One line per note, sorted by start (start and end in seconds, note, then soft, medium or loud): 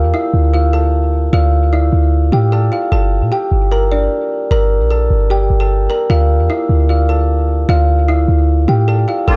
0.00 0.13 E2 loud
0.00 0.11 F4 loud
0.00 0.12 F5 medium
0.14 0.51 E4 medium
0.14 0.52 E5 medium
0.34 1.29 D2 loud
0.54 0.70 F4 medium
0.54 0.71 F5 medium
0.73 1.29 A4 medium
0.73 1.30 A5 medium
1.33 1.90 D2 loud
1.33 1.70 F4 loud
1.33 1.71 F5 medium
1.73 2.10 E4 medium
1.73 2.10 E5 medium
1.93 2.31 D2 loud
2.32 2.70 A2 loud
2.32 2.49 G4 medium
2.32 2.49 G5 medium
2.52 2.69 A4 medium
2.52 2.69 A5 medium
2.72 2.89 F4 medium
2.72 2.89 F5 medium
2.92 3.23 G1 loud
2.92 3.29 A4 loud
2.92 3.30 A5 medium
3.22 3.31 A#2 loud
3.32 3.69 G4 medium
3.32 3.69 G5 medium
3.52 4.09 G1 loud
3.72 3.88 A#4 medium
3.72 3.89 A#5 medium
3.92 4.48 D4 medium
3.92 4.47 D5 medium
4.51 4.82 G1 loud
4.51 4.88 A#4 loud
4.51 4.89 A#5 medium
4.81 5.09 A#1 loud
4.90 5.28 A4 medium
4.90 5.28 A5 medium
5.10 5.49 G1 loud
5.30 5.58 G4 medium
5.30 5.59 G5 medium
5.50 5.88 G1 loud
5.60 5.88 A4 medium
5.60 5.88 A5 medium
5.90 6.06 A#4 medium
5.90 6.07 A#5 medium
6.10 6.41 D2 loud
6.10 6.47 F4 loud
6.10 6.48 F5 medium
6.40 6.49 E2 loud
6.50 6.87 E4 medium
6.50 6.87 E5 medium
6.69 7.65 D2 loud
6.89 7.06 F4 medium
6.89 7.06 F5 medium
7.09 7.65 A4 medium
7.09 7.66 A5 medium
7.69 8.26 D2 loud
7.69 8.06 F4 loud
7.69 8.07 F5 medium
8.08 8.46 E4 medium
8.08 8.46 E5 medium
8.28 8.66 D2 loud
8.68 9.06 A2 loud
8.68 8.85 G4 medium
8.68 8.85 G5 medium
8.88 9.05 A4 medium
8.88 9.05 A5 medium
9.08 9.24 F4 medium
9.08 9.25 F5 medium
9.28 9.36 G1 loud
9.28 9.36 D3 medium
9.28 9.36 G3 medium
9.28 9.36 A#3 medium
9.28 9.36 F4 medium
9.28 9.36 A4 loud
9.28 9.36 A5 medium